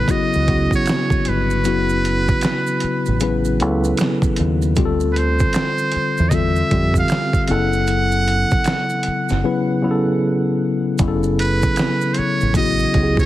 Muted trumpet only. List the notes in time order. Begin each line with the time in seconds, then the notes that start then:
Already playing: B4
0.11 D#5
0.75 C#5
1.28 B4
5.12 B4
5.18 C5
6.29 D#5
6.35 E5
6.98 F5
7.46 F5
7.51 F#5
11.40 B4
12.13 C5
12.18 C#5
12.56 D#5
13.20 C#5